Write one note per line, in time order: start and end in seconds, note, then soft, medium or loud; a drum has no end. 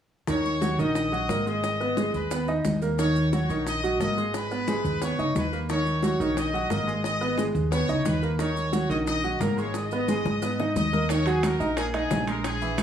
0.27 0.75 D#2 medium
0.27 0.56 D#3 medium
0.27 0.56 D#4 medium
0.27 0.76 C#5 medium
0.27 0.76 C#6 medium
0.27 high bongo medium
0.27 high conga soft
0.27 maracas medium
0.45 high bongo soft
0.45 high conga soft
0.45 maracas soft
0.61 0.75 F#3 medium
0.61 0.76 F#4 medium
0.61 high bongo soft
0.61 high conga medium
0.61 maracas medium
0.78 1.26 A#1 medium
0.78 1.07 D#3 medium
0.78 1.07 D#4 medium
0.78 1.47 D#5 medium
0.78 1.46 D#6 medium
0.78 high conga soft
0.78 maracas soft
0.95 high bongo medium
0.95 high conga soft
0.95 maracas medium
1.12 1.26 F#3 medium
1.12 1.26 F#4 medium
1.12 high bongo soft
1.12 high conga soft
1.12 maracas soft
1.29 2.08 G#1 medium
1.29 1.44 A#3 medium
1.29 1.44 A#4 medium
1.29 high bongo medium
1.29 low bongo medium
1.29 high conga medium
1.29 maracas medium
1.46 1.74 G#3 medium
1.46 1.74 G#4 medium
1.46 2.11 D#5 medium
1.46 2.11 D#6 medium
1.46 high bongo soft
1.46 maracas soft
1.63 high bongo medium
1.63 high conga soft
1.63 maracas medium
1.80 1.94 B3 medium
1.80 1.94 B4 medium
1.80 high bongo soft
1.80 high conga soft
1.80 maracas soft
1.97 2.25 G#3 medium
1.97 2.25 G#4 medium
1.97 high bongo medium
1.97 high conga medium
1.97 maracas medium
2.14 2.61 D#2 medium
2.14 2.49 B4 medium
2.14 2.49 B5 medium
2.14 high bongo soft
2.14 high conga soft
2.14 maracas soft
2.31 2.45 B3 medium
2.31 2.45 B4 medium
2.31 high bongo medium
2.31 high conga soft
2.31 maracas medium
2.48 2.76 D#4 medium
2.48 2.76 D#5 medium
2.48 high bongo soft
2.48 high conga soft
2.48 maracas soft
2.65 3.44 D#2 medium
2.65 high bongo medium
2.65 low bongo medium
2.65 high conga medium
2.65 maracas medium
2.82 2.96 A#3 medium
2.82 2.96 A#4 medium
2.82 high conga medium
2.82 maracas soft
2.99 3.27 D#3 medium
2.99 3.27 D#4 medium
2.99 3.31 C#5 loud
2.99 3.31 C#6 medium
2.99 high bongo medium
2.99 high conga soft
2.99 maracas medium
3.16 high bongo soft
3.16 high conga soft
3.16 maracas soft
3.33 3.47 F#3 medium
3.33 3.47 F#4 medium
3.33 3.64 C#5 medium
3.33 3.65 C#6 medium
3.33 high bongo medium
3.33 high conga medium
3.33 maracas medium
3.49 3.97 A#1 medium
3.49 3.78 D#3 medium
3.49 3.78 D#4 medium
3.49 high conga soft
3.49 maracas soft
3.67 3.99 D#5 loud
3.67 3.99 D#6 medium
3.67 high bongo medium
3.67 high conga soft
3.67 maracas medium
3.84 3.97 F#3 medium
3.84 3.97 F#4 medium
3.84 high bongo soft
3.84 high conga soft
3.84 maracas soft
4.00 4.79 G#1 medium
4.00 4.15 A#3 medium
4.00 4.15 A#4 medium
4.00 4.32 D#5 medium
4.00 4.33 D#6 medium
4.00 high bongo medium
4.00 low bongo medium
4.00 high conga medium
4.00 maracas medium
4.17 4.45 G#3 medium
4.17 4.45 G#4 medium
4.17 high bongo soft
4.17 maracas soft
4.34 4.99 B4 medium
4.34 4.99 B5 medium
4.34 high bongo medium
4.34 high conga soft
4.34 maracas medium
4.51 4.65 B3 medium
4.51 4.65 B4 medium
4.51 high bongo soft
4.51 high conga soft
4.51 maracas soft
4.68 4.96 G#3 medium
4.68 4.96 G#4 medium
4.68 high bongo medium
4.68 high conga loud
4.68 maracas medium
4.84 5.16 D#2 medium
4.84 high bongo soft
4.84 high conga soft
4.84 maracas soft
5.02 5.16 B3 medium
5.02 5.16 B4 medium
5.02 5.36 C#5 medium
5.02 5.37 C#6 medium
5.02 high bongo medium
5.02 high conga soft
5.02 maracas medium
5.18 5.34 C#2 medium
5.18 5.47 D#4 medium
5.18 5.47 D#5 medium
5.18 high bongo soft
5.18 high conga soft
5.18 maracas soft
5.35 6.14 D#2 medium
5.35 5.60 B4 medium
5.35 5.60 B5 medium
5.35 high bongo medium
5.35 low bongo medium
5.35 high conga medium
5.35 maracas medium
5.53 5.66 A#3 medium
5.53 5.67 A#4 medium
5.53 maracas soft
5.69 5.97 D#3 medium
5.69 5.97 D#4 medium
5.69 6.01 C#5 medium
5.69 6.01 C#6 medium
5.69 high bongo medium
5.69 high conga soft
5.69 maracas medium
5.86 high bongo soft
5.86 high conga soft
5.86 maracas soft
6.03 6.17 F#3 medium
6.03 6.17 F#4 medium
6.03 6.35 C#5 medium
6.03 6.36 C#6 medium
6.03 high bongo medium
6.03 high conga medium
6.03 maracas medium
6.20 6.67 A#1 medium
6.20 6.48 D#3 medium
6.20 6.48 D#4 medium
6.20 maracas soft
6.37 6.71 D#5 loud
6.37 6.71 D#6 medium
6.37 high bongo medium
6.37 high conga soft
6.37 maracas medium
6.53 6.68 F#3 medium
6.53 6.68 F#4 medium
6.53 high bongo soft
6.53 high conga soft
6.53 maracas soft
6.70 7.49 G#1 medium
6.70 6.84 A#3 medium
6.70 6.85 A#4 medium
6.70 7.03 D#5 medium
6.70 7.03 D#6 medium
6.70 high bongo medium
6.70 low bongo medium
6.70 high conga medium
6.70 maracas medium
6.87 7.15 G#3 medium
6.87 7.15 G#4 medium
6.87 high bongo soft
6.87 maracas soft
7.04 7.42 D#5 loud
7.04 7.42 D#6 medium
7.04 high bongo medium
7.04 high conga soft
7.04 maracas medium
7.21 7.35 B3 medium
7.21 7.35 B4 medium
7.21 high bongo soft
7.21 high conga soft
7.21 maracas soft
7.38 7.66 G#3 medium
7.38 7.66 G#4 medium
7.38 high bongo medium
7.38 high conga medium
7.38 maracas medium
7.55 7.86 D#2 medium
7.55 high bongo soft
7.55 high conga soft
7.55 maracas soft
7.72 7.86 B3 medium
7.72 7.86 B4 medium
7.72 8.03 C#5 loud
7.72 8.04 C#6 medium
7.72 high bongo medium
7.72 high conga soft
7.72 maracas medium
7.88 8.04 C#2 medium
7.88 8.17 D#4 medium
7.88 8.17 D#5 medium
7.88 high bongo soft
7.88 high conga soft
7.88 maracas soft
8.05 8.84 D#2 medium
8.05 8.31 B4 medium
8.05 8.31 B5 medium
8.05 high bongo medium
8.05 low bongo medium
8.05 high conga medium
8.05 maracas medium
8.22 8.36 A#3 medium
8.22 8.37 A#4 medium
8.22 maracas soft
8.39 8.67 D#3 medium
8.39 8.67 D#4 medium
8.39 8.87 C#5 medium
8.39 8.87 C#6 medium
8.39 high bongo medium
8.39 high conga soft
8.39 maracas medium
8.56 high bongo soft
8.56 high conga soft
8.56 maracas soft
8.72 8.87 F#3 medium
8.72 8.87 F#4 medium
8.72 high bongo medium
8.72 high conga medium
8.72 maracas medium
8.89 9.37 A#1 medium
8.89 9.17 D#3 medium
8.89 9.17 D#4 medium
8.89 8.97 D#5 medium
8.89 8.98 D#6 medium
8.89 high conga soft
8.89 maracas soft
9.07 9.38 D#5 loud
9.07 9.39 D#6 medium
9.07 high bongo medium
9.07 high conga soft
9.07 maracas medium
9.24 9.38 F#3 medium
9.24 9.38 F#4 medium
9.24 high bongo soft
9.24 high conga soft
9.24 maracas soft
9.40 10.19 G#1 medium
9.40 9.55 A#3 medium
9.40 9.58 A#4 medium
9.40 9.55 A#4 medium
9.40 9.58 A#5 medium
9.40 high bongo medium
9.40 low bongo medium
9.40 high conga medium
9.40 maracas medium
9.57 9.85 G#3 medium
9.57 9.86 G#4 medium
9.57 9.74 C#5 medium
9.57 9.75 C#6 medium
9.57 high bongo soft
9.57 maracas soft
9.74 10.72 D#5 medium
9.74 10.72 D#6 medium
9.74 high bongo medium
9.74 high conga soft
9.74 maracas medium
9.91 10.06 B3 medium
9.91 10.06 B4 medium
9.91 high bongo soft
9.91 high conga soft
9.91 maracas soft
10.08 10.36 G#3 medium
10.08 10.36 G#4 medium
10.08 high bongo medium
10.08 high conga medium
10.08 maracas medium
10.25 10.72 G#2 medium
10.25 high bongo loud
10.25 high conga soft
10.25 maracas soft
10.42 10.56 B3 medium
10.42 10.56 B4 medium
10.42 high bongo medium
10.42 high conga soft
10.42 maracas medium
10.59 10.87 D#4 medium
10.59 10.87 D#5 medium
10.59 low bongo medium
10.59 high conga soft
10.59 maracas soft
10.76 11.54 D#2 medium
10.76 11.07 D#5 medium
10.76 11.08 D#6 medium
10.76 low bongo medium
10.76 high conga medium
10.76 maracas medium
10.93 11.06 A#3 medium
10.93 11.07 A#4 medium
10.93 low bongo medium
10.93 high conga medium
10.93 maracas soft
11.09 11.23 D#3 medium
11.09 11.24 D#4 medium
11.09 11.26 C#5 loud
11.09 11.27 C#6 medium
11.09 high bongo medium
11.09 high conga soft
11.09 high timbale medium
11.09 maracas medium
11.26 11.54 F#3 medium
11.26 11.54 F#4 medium
11.26 11.44 G#4 medium
11.26 11.44 G#5 medium
11.26 high bongo soft
11.26 high conga soft
11.26 high timbale medium
11.26 maracas soft
11.43 11.75 A#4 medium
11.43 11.75 A#5 medium
11.43 high bongo medium
11.43 high conga medium
11.43 high timbale medium
11.43 maracas medium
11.60 12.07 A#1 medium
11.60 11.74 D#4 medium
11.60 11.74 D#5 medium
11.60 high conga soft
11.60 maracas soft
11.77 11.91 A#3 medium
11.77 11.85 G#4 medium
11.77 11.91 A#4 medium
11.77 11.86 G#5 medium
11.77 high bongo medium
11.77 high conga soft
11.77 high timbale medium
11.77 maracas medium
11.93 12.22 D#4 medium
11.93 12.25 G#4 medium
11.93 12.22 D#5 medium
11.93 12.26 G#5 medium
11.93 high bongo soft
11.93 high conga soft
11.93 high timbale medium
11.93 maracas soft
12.10 12.83 A#1 medium
12.10 high bongo medium
12.10 low bongo medium
12.10 high conga medium
12.10 low timbale medium
12.10 maracas medium
12.27 12.55 G#3 medium
12.27 12.55 G#4 medium
12.27 12.43 A#4 medium
12.27 12.44 A#5 medium
12.27 high bongo soft
12.27 high timbale medium
12.27 maracas soft
12.44 12.83 G#4 medium
12.44 12.83 G#5 medium
12.44 high bongo medium
12.44 high conga soft
12.44 high timbale medium
12.44 maracas medium
12.61 12.83 E3 medium
12.61 12.83 E4 medium
12.61 high bongo soft
12.61 high conga soft
12.61 maracas soft
12.78 high bongo medium
12.78 high conga medium
12.78 high timbale medium
12.78 maracas medium